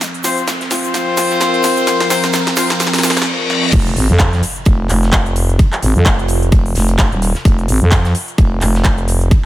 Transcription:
Already playing: F3 C4, riser
0.01 A#4, snare, closed hi-hat, shaker
0.14 closed hi-hat
0.24 C4 F4 C5, snare, closed hi-hat, open hi-hat, shaker
0.37 closed hi-hat, shaker
0.47 snare, closed hi-hat, shaker
0.61 snare, closed hi-hat
0.70 C4 F4 C5, snare, closed hi-hat, open hi-hat, shaker
0.84 closed hi-hat, shaker
0.94 snare, closed hi-hat, shaker
1.17 snare, closed hi-hat, open hi-hat, shaker
1.30 snare, closed hi-hat, shaker
1.40 snare, closed hi-hat, shaker
1.54 closed hi-hat
1.63 snare, closed hi-hat, open hi-hat, shaker
1.77 closed hi-hat, shaker
1.87 snare, closed hi-hat, shaker
2.00 snare, closed hi-hat
2.10 C4 F4 C5, snare, closed hi-hat, open hi-hat, shaker
2.23 snare, closed hi-hat, shaker
2.33 snare, closed hi-hat, shaker
2.47 snare, closed hi-hat
2.56 C4 F4 C5, snare, closed hi-hat, open hi-hat, shaker
2.70 snare, closed hi-hat, shaker
2.80 snare, closed hi-hat, reverse cymbal, shaker
2.87 snare
2.93 snare, open hi-hat, shaker
2.98 snare
3.03 snare, closed hi-hat, open hi-hat, shaker
3.10 snare
3.17 snare, closed hi-hat, shaker
3.22 snare
3.50 snare
3.63 mid tom
3.72 F1 C3 F3 F4, kick, closed hi-hat, crash, impact
3.86 closed hi-hat
3.96 G#1, closed hi-hat, open hi-hat
4.10 F2, closed hi-hat
4.19 kick, snare, clap, closed hi-hat
4.33 snare, closed hi-hat
4.43 closed hi-hat, open hi-hat
4.56 closed hi-hat
4.65 F1, kick, closed hi-hat
4.89 F1, clap, closed hi-hat, open hi-hat
5.03 snare, closed hi-hat
5.13 F1, kick, snare, clap, closed hi-hat
5.26 closed hi-hat
5.36 closed hi-hat, open hi-hat
5.49 closed hi-hat
5.59 kick, closed hi-hat
5.73 clap, closed hi-hat
5.82 G#1, closed hi-hat, open hi-hat
5.96 F2, closed hi-hat
6.06 F1, kick, snare, clap, closed hi-hat
6.19 closed hi-hat
6.28 closed hi-hat, open hi-hat
6.42 closed hi-hat
6.52 F1, kick, closed hi-hat
6.66 open hi-hat
6.75 F1, snare, closed hi-hat, open hi-hat
6.88 closed hi-hat
6.99 F1, kick, snare, clap, closed hi-hat
7.12 D#1, closed hi-hat
7.22 closed hi-hat, open hi-hat
7.35 snare, closed hi-hat
7.45 F1, kick, closed hi-hat
7.58 closed hi-hat
7.68 G#1, closed hi-hat, open hi-hat
7.82 F2, closed hi-hat
7.92 kick, snare, clap, closed hi-hat
8.05 snare, closed hi-hat
8.15 closed hi-hat, open hi-hat
8.28 closed hi-hat
8.38 F1, kick, closed hi-hat
8.61 F1, clap, closed hi-hat, open hi-hat
8.75 snare, closed hi-hat
8.84 F1, kick, snare, clap, closed hi-hat
8.98 closed hi-hat
9.08 closed hi-hat, open hi-hat
9.21 closed hi-hat
9.31 kick, closed hi-hat

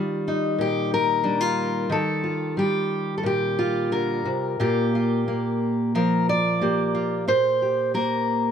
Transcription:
Already playing: D#3 G3 F4
0.28 D#4
0.58 A#2 G4
0.94 A#4
1.24 G3 D4
1.41 F4
1.89 D#3 A4
2.24 F4
2.57 G3 G4
3.18 A4
3.23 A#2 G4
3.59 F4
3.92 D3 A#4
4.25 C3
4.60 A#2 A#3 F4 G4
4.95 F4
5.28 A#3
5.95 F3 A#4
6.29 D5
6.61 A#3 G4
6.95 F4
7.28 A#2 C5
7.62 G4
7.94 A#3 A#4

